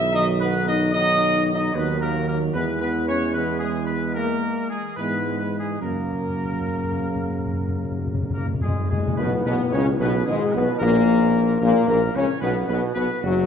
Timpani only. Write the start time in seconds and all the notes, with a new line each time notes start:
Already playing: B2
5.82 F#2
5.89 F#2
5.97 F#2
6.06 F#2
6.13 F#2
6.21 F#2
6.29 F#2
6.36 F#2
6.44 F#2
6.52 F#2
6.60 F#2
6.68 F#2
6.76 F#2
6.84 F#2
6.92 F#2
7.00 F#2
7.07 F#2
7.16 F#2
7.23 F#2
7.31 F#2
7.38 F#2
7.46 F#2
7.53 F#2
7.61 F#2
7.68 F#2
7.75 F#2
7.84 F#2
7.91 F#2
7.99 F#2
8.07 F#2
8.14 F#2
8.22 F#2
8.30 F#2
8.37 F#2
8.46 F#2
8.54 F#2
8.61 F#2
8.68 F#2
8.76 F#2
8.84 F#2
8.92 F#2
9.00 F#2
9.08 F#2